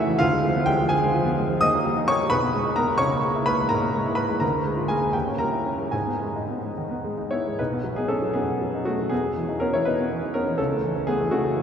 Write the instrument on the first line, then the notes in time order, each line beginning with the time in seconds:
grand piano
Already playing: C#2 C#3 E3 A3 C#4 E4 F#4 G#4 A4 E5 F#5 G#5 A5
0.07 E3
0.19 D2 F4 F5
0.32 G#3
0.45 F3
0.56 B3
0.66 G#3 G4 G5
0.79 F3
0.89 D3 G#4 G#5
1.02 G#3
1.14 F3
1.26 B3
1.37 G#3
1.49 F3
1.61 D#2 D#5 D#6
1.74 A#3
1.85 G3
1.98 D#4
2.08 A#3 C#5 C#6
2.21 G3
2.30 B1 B4 B5
2.42 B3
2.54 G#3
2.65 D#4
2.76 B3 A#4 A#5
2.87 G#3
2.98 C#2 C#5 C#6
3.12 A#3
3.24 G#3
3.36 E4
3.46 A#3 B4 B5
3.59 G#3
3.69 G#2 A#4 A#5
3.82 A#3
3.94 G#3
4.05 E4
4.15 A#3 B4 B5
4.29 G#3
4.40 D2 A#4 A#5
4.53 A#3
4.66 G#3
4.77 F4
4.88 A#3 G#4 G#5
5.02 G#3
5.13 D#2 G4 G5
5.27 C#4
5.38 G3 A#4 A#5
5.52 E4
5.66 C#4
5.78 G3
5.91 G#2 G#4 G#5
6.07 B3
6.22 G#3
6.36 D#4
6.51 B3
6.63 G#3
6.77 D#3
6.91 B3
7.04 G#3
7.18 D#4
7.31 B3 E4 C#5
7.47 G#3
7.59 B1 D#4 B4
7.73 B3
7.84 F#3
7.96 B3 D#4 G#4
8.08 B3 C#4 A4
8.22 F#3
8.34 F#2 B3 G#4
8.48 B3
8.61 F#3
8.75 D#4
8.85 A3 B3 F#4
8.99 F#3
9.09 E2 B3 G#4
9.37 E3
9.49 D#4
9.60 B3 C#4 A#4
9.73 E3 E4 C#5
9.85 B2 D#4 B4
9.99 B3
10.11 E3
10.23 D#4
10.34 B3 C#4 A#4
10.47 E3
10.58 C#2 C#4 A4
10.72 A3
10.84 E3
10.95 C#4
11.07 A3 B3 G#4
11.21 E3
11.31 C#3 A3 F#4
11.44 A3
11.55 E3